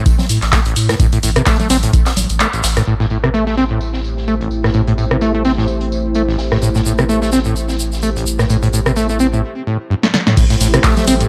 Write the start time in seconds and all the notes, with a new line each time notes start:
0.06 kick, closed hi-hat, tambourine, shaker
0.18 snare, low conga, shaker
0.29 A2, open hi-hat, tambourine, shaker
0.42 A1, snare, clap, closed hi-hat, shaker
0.52 A3, kick, snare, clap, closed hi-hat, tambourine, shaker
0.65 A1, closed hi-hat, shaker
0.76 A2, open hi-hat, tambourine, shaker
0.89 A2, cross-stick, snare, closed hi-hat, shaker
1.00 A2, kick, closed hi-hat, tambourine, shaker
1.12 A2, closed hi-hat, shaker
1.23 A1 A2, open hi-hat, tambourine, shaker
1.36 C3, cross-stick, closed hi-hat, shaker
1.46 A3, kick, snare, clap, closed hi-hat, tambourine, shaker
1.60 A3, closed hi-hat, low conga, shaker
1.70 A1 C4, snare, open hi-hat, tambourine, low conga, shaker
1.83 A2, closed hi-hat, shaker
1.93 kick, closed hi-hat, tambourine, shaker
2.06 snare, clap, closed hi-hat, tambourine, shaker
2.16 A1, closed hi-hat, open hi-hat, low conga, shaker
2.29 A1, closed hi-hat, tambourine, shaker
2.40 A3, clap, closed hi-hat, tambourine, shaker
2.53 A1, closed hi-hat, shaker
2.63 A1, snare, open hi-hat, tambourine, shaker
2.76 A2, cross-stick, snare, closed hi-hat, shaker
2.87 A1 A2 A3 E4 G4 C5, tambourine
3.00 A2, snare
3.10 A2, tambourine
3.24 C3, cross-stick
3.34 A3, tambourine
3.47 A3, snare
3.57 C4, snare, tambourine
3.70 A2
3.81 tambourine
3.93 snare
4.04 tambourine
4.17 snare
4.28 A3, tambourine
4.41 A1, closed hi-hat
4.51 tambourine
4.64 A2, cross-stick, snare
4.74 A2, tambourine
4.87 A2, closed hi-hat
4.98 A2, tambourine
5.11 C3, cross-stick
5.21 A3, tambourine
5.35 A3
5.45 C4, snare, tambourine
5.58 A2, snare
5.68 tambourine
5.81 closed hi-hat
5.92 tambourine
6.15 A3, tambourine
6.28 A1, snare
6.38 snare, tambourine
6.52 A2, cross-stick, snare
6.62 A2, tambourine, shaker
6.75 A2, snare, shaker
6.86 A2, tambourine, shaker
6.98 C3, cross-stick, shaker
7.09 A3, tambourine, shaker
7.22 A3, snare, shaker
7.32 C4, snare, tambourine, shaker
7.45 A2, shaker
7.56 tambourine, shaker
7.68 snare, shaker
7.79 tambourine, shaker
7.92 snare, shaker
8.02 A3, tambourine, shaker
8.16 A1, closed hi-hat, shaker
8.27 tambourine, shaker
8.39 A2, cross-stick, snare, shaker
8.50 A2, tambourine, shaker
8.63 A2, closed hi-hat, shaker
8.73 A2, tambourine, shaker
8.86 C3, cross-stick, shaker
8.96 A3, tambourine, shaker
9.09 A3, shaker
9.19 C4, tambourine, shaker
9.33 A2, shaker
9.67 A2
9.90 G2
10.03 A3, snare
10.14 D3, snare
10.27 A2, snare
10.37 A2 A3 E4 G4 C5, kick, closed hi-hat, crash, ride, tambourine, shaker
10.50 A2, snare, closed hi-hat, shaker
10.60 A1 A2, open hi-hat, tambourine, shaker
10.73 C3, cross-stick, closed hi-hat, shaker
10.84 A3, kick, snare, clap, closed hi-hat, ride, tambourine, shaker
10.97 A3, snare, closed hi-hat, low conga, shaker
11.07 A1 C4, open hi-hat, tambourine, low conga, shaker
11.20 A2, closed hi-hat, shaker